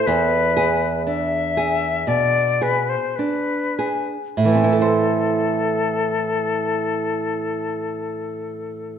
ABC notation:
X:1
M:4/4
L:1/16
Q:1/4=52
K:Am
V:1 name="Flute"
B4 e4 d2 B c B4 | A16 |]
V:2 name="Nylon-string guitar"
E,,2 ^G2 D2 G2 B,,2 G2 D2 G2 | [A,,E,CEAc]16 |]